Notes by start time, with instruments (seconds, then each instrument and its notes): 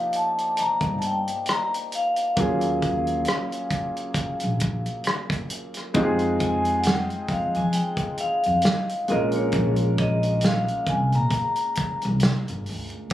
Already playing: grand piano F3 A#3 D4 D#4 G4, vibraphone F5
0.13 vibraphone A5, closed hi-hat
0.38 closed hi-hat
0.57 vibraphone A#5, muted upright bass stroke, closed hi-hat
0.81 upright bass G1, kick, closed hi-hat
0.99 vibraphone A5, closed hi-hat
1.07 vibraphone G5
1.28 closed hi-hat
1.46 cross-stick, closed hi-hat
1.51 vibraphone A#5
1.74 closed hi-hat
1.92 vibraphone F5, closed hi-hat
2.16 closed hi-hat
2.36 upright bass D#2, grand piano F#3 A#3 C#4 F4 G#4, kick, closed hi-hat
2.61 closed hi-hat
2.82 kick, closed hi-hat
3.07 closed hi-hat
3.25 cross-stick, closed hi-hat
3.52 closed hi-hat
3.71 kick, closed hi-hat
3.97 closed hi-hat
4.14 muted upright bass stroke, kick, closed hi-hat
4.40 upright bass A#1, closed hi-hat
4.60 kick, closed hi-hat
4.86 closed hi-hat
5.04 cross-stick, closed hi-hat
5.30 kick, closed hi-hat
5.50 closed hi-hat
5.74 cross-stick, closed hi-hat
5.94 upright bass F2, grand piano G#3 C4 D#4 F4 G4, kick, closed hi-hat
6.04 grand piano G#4
6.19 closed hi-hat
6.40 vibraphone G#5, kick, closed hi-hat
6.65 closed hi-hat
6.80 vibraphone F#5, closed hi-hat
6.86 vibraphone G5, snare
7.10 closed hi-hat
7.28 upright bass F2, vibraphone F5, kick, closed hi-hat
7.55 upright bass F3, vibraphone G#5, closed hi-hat
7.73 vibraphone G5, closed hi-hat
7.97 kick, closed hi-hat
8.18 vibraphone F5, muted upright bass stroke, closed hi-hat
8.43 upright bass F2, closed hi-hat
8.62 snare, closed hi-hat
8.89 closed hi-hat
9.08 upright bass A#1, grand piano G#3 A#3 C#4 F4 A#4, vibraphone D#5, closed hi-hat
9.32 closed hi-hat
9.36 vibraphone C#5
9.52 upright bass A#1, kick, closed hi-hat
9.76 closed hi-hat
9.98 vibraphone D#5, kick, closed hi-hat
10.23 closed hi-hat
10.41 vibraphone F5, snare, closed hi-hat
10.68 closed hi-hat
10.87 upright bass C2, vibraphone G#5, kick, closed hi-hat
11.12 upright bass A#2, vibraphone A#5, closed hi-hat
11.31 kick, closed hi-hat
11.56 closed hi-hat
11.75 muted upright bass stroke, kick, closed hi-hat
12.02 upright bass C2, closed hi-hat
12.20 snare, closed hi-hat
12.48 upright bass G1, closed hi-hat
12.66 upright bass D2, open hi-hat
12.90 closed hi-hat
13.10 closed hi-hat